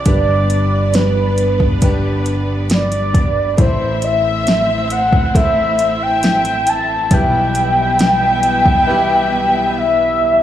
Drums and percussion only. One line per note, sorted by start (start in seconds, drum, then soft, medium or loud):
0.06 kick medium
0.06 closed hi-hat medium
0.50 closed hi-hat medium
0.94 snare medium
0.94 closed hi-hat medium
1.38 closed hi-hat medium
1.60 kick medium
1.82 kick medium
1.82 closed hi-hat medium
2.26 closed hi-hat medium
2.70 snare loud
2.70 closed hi-hat medium
2.92 closed hi-hat soft
3.14 kick medium
3.14 closed hi-hat medium
3.58 kick medium
3.58 closed hi-hat medium
4.02 closed hi-hat medium
4.47 snare medium
4.47 closed hi-hat medium
4.90 closed hi-hat medium
5.13 kick medium
5.35 kick medium
5.35 closed hi-hat medium
5.79 closed hi-hat medium
6.23 snare loud
6.23 closed hi-hat medium
6.45 closed hi-hat soft
6.67 closed hi-hat medium
7.11 kick medium
7.11 closed hi-hat medium
7.55 closed hi-hat medium
7.99 snare loud
7.99 closed hi-hat medium
8.43 closed hi-hat medium
8.66 kick medium